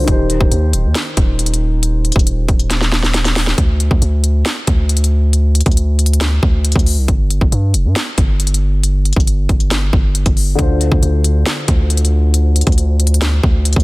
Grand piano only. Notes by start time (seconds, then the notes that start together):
0.04 D#3 D#4
0.08 G4 C5
10.55 D3 D4
10.60 F4 C5